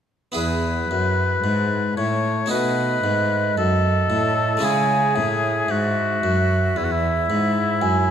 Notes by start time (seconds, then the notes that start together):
0.32 E2 B3 E4 G#4
0.37 B4
0.89 F#2
1.43 G#2
1.96 A2 C#5
2.46 A3 D#4 F#4 D#5
2.50 B2 B4
3.04 G#2
3.57 F#2 A4
4.10 A2
4.57 G#3 C#4 E4
4.62 C#3 G#4 G#5
5.15 A2 E5
5.68 G#2 F#4
6.23 F#2
6.76 E2 E4
6.84 F#4
6.92 E4
7.30 G#2
7.82 F#2 G#5